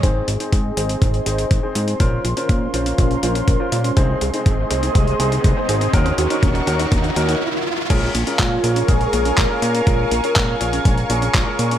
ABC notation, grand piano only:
X:1
M:4/4
L:1/16
Q:1/4=122
K:Bbm
V:1 name="Grand piano"
[CEAc]2 z [CEAc]3 [CEAc]4 [CEAc]3 [CEAc]3 | [DFBc]2 z [DFBc]3 [DFBc]4 [DFBc]3 [DFBc]3 | [CEAc]2 z [CEAc]3 [CEAc]4 [CEAc]3 [CEAc]3 | [DEGB]2 z [DEGB]3 [DEGB]4 [DEGB]2 z4 |
[DFAB]2 z [DFAB]3 [DFAB]4 [DFAB]3 [DFAB]3 | [DFAB]2 z [DFAB]3 [DFAB]4 [DFAB]3 [DFAB]3 |]